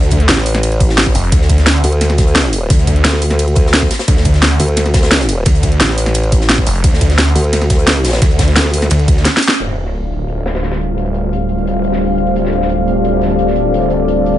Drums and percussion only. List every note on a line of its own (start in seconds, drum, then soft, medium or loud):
0.03 closed hi-hat soft
0.11 kick medium
0.11 closed hi-hat medium
0.11 ride bell medium
0.20 closed hi-hat soft
0.29 snare loud
0.29 closed hi-hat medium
0.29 closed hi-hat loud
0.29 ride bell medium
0.37 snare soft
0.46 closed hi-hat medium
0.46 open hi-hat medium
0.46 ride bell medium
0.54 snare soft
0.54 closed hi-hat soft
0.63 closed hi-hat loud
0.63 closed hi-hat medium
0.63 ride bell medium
0.72 closed hi-hat soft
0.80 kick loud
0.80 closed hi-hat medium
0.80 ride bell medium
0.89 snare medium
0.97 snare loud
0.97 closed hi-hat loud
0.97 open hi-hat medium
0.97 ride bell medium
1.06 kick medium
1.06 snare soft
1.15 closed hi-hat medium
1.15 open hi-hat medium
1.15 ride bell medium
1.24 closed hi-hat soft
1.32 kick loud
1.32 closed hi-hat medium
1.32 ride bell medium
1.41 snare soft
1.49 kick medium
1.49 closed hi-hat medium
1.49 ride bell medium
1.58 snare soft
1.58 closed hi-hat soft
1.66 snare loud
1.66 closed hi-hat medium
1.66 ride bell medium
1.84 closed hi-hat medium
1.84 open hi-hat medium
1.84 ride bell medium
1.92 closed hi-hat soft
2.01 snare soft
2.01 closed hi-hat medium
2.01 ride bell medium
2.10 snare soft
2.10 closed hi-hat soft
2.18 kick loud
2.18 snare soft
2.18 closed hi-hat medium
2.18 ride bell medium
2.27 closed hi-hat soft
2.35 snare loud
2.35 closed hi-hat medium
2.35 ride bell medium
2.45 snare soft
2.53 closed hi-hat medium
2.53 open hi-hat medium
2.53 ride bell medium
2.70 kick loud
2.70 closed hi-hat medium
2.70 ride bell medium
2.87 kick medium
2.87 closed hi-hat medium
2.87 ride bell medium
2.96 closed hi-hat soft
3.05 snare loud
3.05 closed hi-hat medium
3.05 ride bell medium
3.13 snare soft
3.22 closed hi-hat medium
3.22 open hi-hat medium
3.22 ride bell medium
3.30 snare soft
3.30 closed hi-hat soft
3.39 closed hi-hat medium
3.39 ride bell medium
3.48 closed hi-hat soft
3.56 kick loud
3.56 closed hi-hat medium
3.56 ride bell medium
3.66 snare medium
3.73 snare loud
3.73 closed hi-hat medium
3.73 open hi-hat medium
3.73 ride bell medium
3.82 kick medium
3.82 snare soft
3.91 snare medium
3.91 closed hi-hat medium
3.91 open hi-hat medium
3.91 ride bell medium
3.99 snare loud
3.99 closed hi-hat medium
4.08 kick loud
4.08 closed hi-hat medium
4.08 ride bell medium
4.17 snare medium
4.25 kick medium
4.25 closed hi-hat medium
4.25 ride bell medium
4.34 snare soft
4.34 closed hi-hat soft
4.42 snare loud
4.42 closed hi-hat medium
4.42 ride bell medium
4.60 closed hi-hat medium
4.60 open hi-hat medium
4.60 ride bell medium
4.68 closed hi-hat soft
4.77 snare soft
4.77 closed hi-hat medium
4.77 ride bell medium
4.86 snare soft
4.86 closed hi-hat soft
4.94 kick loud
4.94 snare loud
4.94 closed hi-hat medium
4.94 ride bell medium
5.03 snare loud
5.03 closed hi-hat medium
5.11 snare loud
5.11 closed hi-hat medium
5.11 ride bell medium
5.20 snare medium
5.20 closed hi-hat medium
5.29 closed hi-hat medium
5.29 open hi-hat medium
5.29 ride bell medium
5.46 kick loud
5.46 closed hi-hat medium
5.46 closed hi-hat loud
5.46 ride bell medium
5.55 closed hi-hat soft
5.63 kick medium
5.63 closed hi-hat medium
5.63 ride bell medium
5.72 closed hi-hat soft
5.80 snare loud
5.80 closed hi-hat loud
5.80 closed hi-hat medium
5.80 ride bell medium
5.89 snare soft
5.98 closed hi-hat medium
5.98 open hi-hat medium
5.98 ride bell medium
6.06 snare soft
6.06 closed hi-hat soft
6.14 closed hi-hat medium
6.14 ride bell medium
6.24 closed hi-hat soft
6.32 kick loud
6.32 closed hi-hat medium
6.32 ride bell medium
6.41 snare medium
6.49 snare loud
6.49 closed hi-hat loud
6.49 open hi-hat medium
6.49 ride bell medium
6.58 kick medium
6.58 snare soft
6.66 closed hi-hat medium
6.66 open hi-hat medium
6.66 ride bell medium
6.75 closed hi-hat soft
6.84 kick loud
6.84 closed hi-hat loud
6.84 closed hi-hat medium
6.84 ride bell medium
6.93 snare medium
7.01 kick medium
7.01 closed hi-hat medium
7.01 ride bell medium
7.10 snare soft
7.10 closed hi-hat soft
7.18 snare loud
7.18 closed hi-hat loud
7.18 closed hi-hat medium
7.18 ride bell medium
7.36 closed hi-hat medium
7.36 open hi-hat medium
7.36 ride bell medium
7.44 closed hi-hat soft
7.53 snare soft
7.53 closed hi-hat loud
7.53 closed hi-hat medium
7.53 ride bell medium
7.62 snare soft
7.62 closed hi-hat soft
7.70 kick loud
7.70 snare soft
7.70 closed hi-hat medium
7.70 ride bell medium
7.79 closed hi-hat soft
7.87 snare loud
7.87 closed hi-hat medium
7.87 closed hi-hat loud
7.87 ride bell medium
7.96 snare soft
8.04 snare medium
8.04 closed hi-hat medium
8.04 open hi-hat medium
8.04 ride bell medium
8.09 snare loud
8.09 closed hi-hat medium
8.13 snare loud
8.13 closed hi-hat medium
8.22 kick loud
8.22 snare soft
8.22 closed hi-hat loud
8.22 closed hi-hat medium
8.22 ride bell medium
8.31 closed hi-hat soft
8.39 kick medium
8.39 snare loud
8.39 closed hi-hat medium
8.39 ride bell medium
8.48 snare soft
8.48 closed hi-hat soft
8.55 snare loud
8.55 closed hi-hat medium
8.55 closed hi-hat loud
8.55 ride bell medium
8.65 snare soft
8.74 closed hi-hat medium
8.74 open hi-hat medium
8.74 ride bell medium
8.82 snare soft
8.82 closed hi-hat soft
8.90 closed hi-hat medium
8.90 closed hi-hat loud
8.90 ride bell medium
8.99 closed hi-hat soft
9.08 kick loud
9.08 closed hi-hat medium
9.08 ride bell medium
9.17 snare soft
9.25 snare loud
9.25 snare medium
9.25 closed hi-hat medium
9.25 closed hi-hat loud
9.25 ride bell medium
9.37 snare medium
9.43 closed hi-hat medium
9.43 open hi-hat medium
9.43 ride bell medium
9.48 snare loud
9.61 closed hi-hat medium
9.68 snare soft
9.77 closed hi-hat medium
9.85 snare soft
9.95 closed hi-hat medium
10.12 closed hi-hat medium
10.28 closed hi-hat medium
10.46 snare loud
10.46 closed hi-hat medium
10.55 snare medium
10.55 closed hi-hat medium
10.63 snare medium
10.63 closed hi-hat medium
10.71 snare loud
10.71 closed hi-hat medium
10.81 closed hi-hat medium
10.98 closed hi-hat medium
11.06 closed hi-hat soft
11.14 closed hi-hat medium
11.33 closed hi-hat medium
11.49 closed hi-hat medium
11.58 closed hi-hat soft
11.67 closed hi-hat medium
11.84 closed hi-hat medium
11.92 snare medium
12.02 open hi-hat medium
12.18 closed hi-hat medium
12.27 closed hi-hat soft
12.36 closed hi-hat medium
12.45 snare medium
12.53 closed hi-hat medium
12.61 snare soft
12.70 closed hi-hat medium
12.88 closed hi-hat medium
13.05 closed hi-hat medium
13.21 snare soft
13.21 closed hi-hat medium
13.30 closed hi-hat soft
13.39 closed hi-hat medium
13.47 snare soft
13.56 closed hi-hat medium
13.74 closed hi-hat medium
13.90 closed hi-hat medium
14.08 closed hi-hat medium
14.26 closed hi-hat medium
14.34 closed hi-hat soft